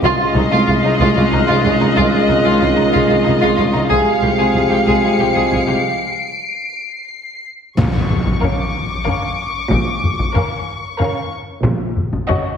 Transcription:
0.02 C2 D#3 G#3 C#4 F4 D#5 F6 C7
0.35 C2 G#3 D#4
0.51 C2 G#3 F4
0.67 C2 G#3 F4 F#6
0.84 C2 G#3 D#4
0.99 C2 G#3 F4
1.16 C2 G#3 F4
1.32 C2 G#3 D#4
1.48 C2 G#3 F4
1.64 C2 G#3 F4
1.80 C2 G#3 D#4
1.96 C2 G#3 F4
2.29 C2 G#3 D#4
2.44 C2 G#3 F4
2.60 C2 G#3 F4
2.76 C2 G#3 D#4
2.92 C2 G#3 F4
3.08 C2 G#3 F4
3.24 C2 G#3 D#4
3.40 C2 G#3 F4
3.57 C2 G#3 F4
3.73 C2 G#3 D#4
3.89 C2 F3 G#3 C4 G4 G#4 F5 C7 C#7
4.23 C2 G#3 G4
4.38 C2 G#3 G#4
4.54 C2 G#3 G#4
4.71 C2 G#3 G4
4.87 C2 G#3 G#4
5.02 C2 G#3 G#4
5.19 C2 G#3 G4
5.35 C2 G#3 G#4
5.51 C2 G#3 G#4
5.67 C2 G#3 G4
6.06 D7
7.77 A#1 A#2 C#6, taiko, impact
8.10 taiko low-mid
8.26 taiko
8.41 C#4 A#4 F5 D6, taiko low-mid
9.05 C#4 A#4 F5, taiko low-mid
9.71 A#1 A#2, taiko
10.03 taiko low-mid
10.19 taiko
10.35 C#4 A#4 F5, taiko low-mid
10.57 C#6
10.99 C#4 A#4 F5, taiko low-mid
11.64 A#1 A#2, taiko
11.97 taiko low-mid
12.13 taiko
12.28 C#4 F#4 D#5, taiko low-mid

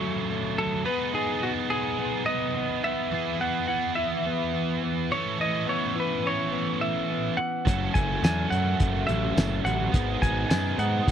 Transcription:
Already playing: F#3 A3 C#4 A4 C#5
0.01 F#3
0.30 A3
0.58 F#3 A4
0.85 B3 D#4 G#4 B4
1.13 D#4 G#4
1.43 B3 F#4
1.70 D#4 G#4
1.99 B3
2.26 B3 D#5
2.57 B3
2.84 B3 E5
3.11 E3 B3 E4 G#4
3.40 B3 F#5
3.68 E3 F#5
3.95 E4 E5
4.26 B3
4.53 E3
4.83 B3
5.11 E3 A3 C#4 A4 C#5
5.40 E3 D#5
5.66 B3 C#5
5.96 E3
6.00 B4
6.24 C#4 C#5
6.52 B3
6.81 E3 E5
7.10 B3
7.37 E3 F#5
7.65 F#1 A2 C#3 F#3 A3 C#4 F#4 A4, kick, closed hi-hat
7.94 F#1 A3 G#5, kick, closed hi-hat
8.22 E2 F#3 G#5, snare, closed hi-hat, tambourine
8.50 F#2 C#4 F#5, closed hi-hat
8.79 F#1 A3, kick, closed hi-hat
9.06 A1 F#3 E5, closed hi-hat
9.35 F#1 A3, snare, closed hi-hat, tambourine
9.65 A1 F#3 F#5, closed hi-hat
9.92 G#1 B2 D#3 G#3 B3 D#4 G#4, kick, closed hi-hat
10.22 G#1 D#4 G#5, kick, closed hi-hat
10.50 F#2 B3 G#5, snare, closed hi-hat, tambourine
10.78 G#2 D#4 F#5, closed hi-hat
11.07 G#1, kick, closed hi-hat

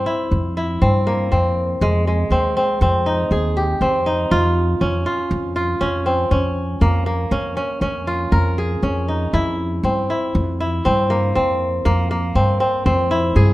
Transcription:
Already playing: C4
0.06 E4
0.31 F2
0.57 E4
0.82 G2 C4
1.07 A#3
1.32 F2 C4
1.81 F2 G#3
2.07 G#3
2.30 D#2 C4
2.57 C4
2.81 F2 C4
3.06 D#4
3.31 D#2 G#4
3.57 G4
3.81 F2 C4
4.06 D#4
4.31 F2 F4
4.81 F2 C#4
5.06 F4
5.31 F2
5.56 F4
5.81 F2 C#4
6.06 C4
6.31 F2 C#4
6.81 F2 A#3
7.06 A#3
7.31 F2 C#4
7.57 C#4
7.81 F2 C#4
8.07 F4
8.32 F2 A#4
8.58 G#4
8.83 F2 C#4
9.08 D#4
9.33 F2 E4
9.83 G2 C4
10.10 E4
10.35 F2
10.60 E4
10.85 G2 C4
11.10 A#3
11.35 F2 C4
11.85 F2 A#3
12.11 A#3
12.35 G2 C4
12.60 C4
12.86 F2 C4
13.11 E4
13.36 G2 G#4

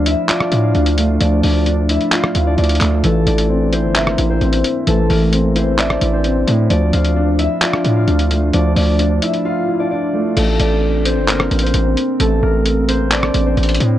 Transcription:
Already playing: D2 F3 A#3 C4 D4 F4 C5 D5 F5
0.06 E4 E5, closed hi-hat
0.29 D4 F4 D5, clap, closed hi-hat
0.40 cross-stick
0.52 A2, closed hi-hat
0.63 F4 F5
0.75 D2 D4, closed hi-hat
0.86 closed hi-hat
0.98 A3, closed hi-hat
1.21 D2 F3 D4 D5, closed hi-hat
1.43 D2 D4 D5, open hi-hat
1.66 D4, closed hi-hat
1.89 E4 E5, closed hi-hat
2.01 closed hi-hat
2.12 F4 F5, clap, closed hi-hat
2.24 cross-stick
2.35 D2 E4, closed hi-hat
2.47 D4 D5
2.58 D2 D4 D5, closed hi-hat
2.64 closed hi-hat
2.69 closed hi-hat
2.75 closed hi-hat
2.81 D2 A3, clap, closed hi-hat
3.04 A1 E3 A3 A4, closed hi-hat
3.27 A1 D4 D5, closed hi-hat
3.38 closed hi-hat
3.50 C4
3.73 C4 E4 C5, closed hi-hat
3.84 G1
3.95 A#3 A#4 E5, clap, closed hi-hat
4.07 cross-stick
4.18 A1 E4, closed hi-hat
4.30 C4 C5
4.41 A1 C4, closed hi-hat
4.53 closed hi-hat
4.64 closed hi-hat
4.87 A1 E3 A3 A4, closed hi-hat
5.10 A1 A#3 A#4, open hi-hat
5.33 C4, closed hi-hat
5.56 C4 E4 C5, closed hi-hat
5.79 D4 D5 E5, clap, closed hi-hat
5.90 cross-stick
6.01 A1 E4, closed hi-hat
6.13 C4 C5
6.24 C4, closed hi-hat
6.47 A2 A3, closed hi-hat
6.70 D2 F3 D4 D5, closed hi-hat
6.93 D2 F4 F5, closed hi-hat
7.05 closed hi-hat
7.16 D4
7.39 E4 E5, closed hi-hat
7.62 D4 F4 D5, clap, closed hi-hat
7.73 cross-stick
7.85 A2, closed hi-hat
7.96 F4 F5
8.08 D2 D4, closed hi-hat
8.19 closed hi-hat
8.31 A3, closed hi-hat
8.53 D2 F3 D4 D5, closed hi-hat
8.76 D2 D4 D5, open hi-hat
8.99 D4, closed hi-hat
9.22 E4 E5, closed hi-hat
9.34 closed hi-hat
9.45 F4 F5
9.68 E4
9.80 D4 D5
9.91 D4 D5
10.14 A3
10.37 A1 A3 C4 A4, closed hi-hat, crash
10.60 A1 D4 D5, closed hi-hat
11.05 C4 C5, closed hi-hat
11.17 G1
11.28 A#3 A#4, clap, closed hi-hat
11.40 cross-stick
11.51 A1, closed hi-hat
11.59 closed hi-hat
11.63 C4 C5, closed hi-hat
11.74 A1, closed hi-hat
11.97 closed hi-hat
12.20 A1 A3 A4, closed hi-hat
12.43 A1 A#3 A#4
12.66 closed hi-hat
12.89 C4 C5, closed hi-hat
13.11 D4 D5, clap, closed hi-hat
13.23 cross-stick
13.34 A1, closed hi-hat
13.46 C4 C5
13.57 A1, closed hi-hat
13.63 closed hi-hat
13.69 closed hi-hat
13.74 closed hi-hat
13.80 A2, closed hi-hat

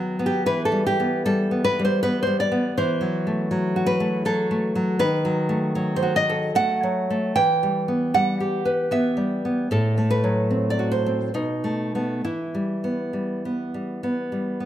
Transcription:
Already playing: D#3 F#3 B3 F#4
0.19 B3
0.26 G4
0.46 E3 B4
0.65 A4
0.72 G3
0.87 G4
1.00 B3
1.25 G3 A4
1.51 B3
1.64 B4
1.79 G3
1.85 C5
2.03 B3 B4
2.23 C5
2.27 G3
2.40 D5
2.52 B3
2.78 E3 C5
3.01 F#3
3.27 A3
3.51 F#3
3.76 F#4
3.86 B4
4.00 A3
4.25 F#3 A4
4.51 A3
4.75 F#3
4.99 D#3 B4
5.25 F#3
5.49 A3
5.75 F#3
5.96 C5
6.03 F#4
6.16 D#5
6.29 A4
6.55 A3 F#5
6.83 F#3
7.10 A3
7.35 E3 G5
7.63 G3
7.88 B3
8.14 G3 F#5
8.40 G4
8.65 B4
8.91 B3 E5
9.17 G3
9.45 B3
9.71 A2 A4
9.98 A3
10.10 B4
10.24 F#3
10.50 C4
10.70 D5
10.79 F#4
10.91 C5
11.06 C4
11.34 B2 D#4
11.64 A3
11.95 A3 B3
12.24 E3 E4
12.55 G3
12.84 B3
13.13 G3
13.45 B3
13.74 G3
14.03 B3
14.32 G3
14.60 B3

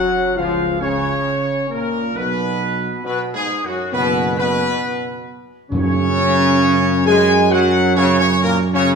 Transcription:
Already playing: F#3 F#4 F#5
0.35 C#2 F3 F4 F5
0.80 C#3 C#4 C#5
1.70 A#2 A#3 A#4
2.14 B1 B2 B3 B4
3.04 B2 B3 B4
3.34 G#2 G#3 G#4
3.64 F#2 F#3 F#4
3.92 F#1 B2 B3 B4
4.37 B2 B3 B4
5.70 F#2 C#3 C#4 C#5
7.06 G#3 G#4 G#5
7.50 F#3 F#4 F#5
7.96 C#3 C#4 C#5
8.19 C#3 C#4 C#5
8.42 A#2 A#3 A#4
8.74 C#3 C#4 C#5

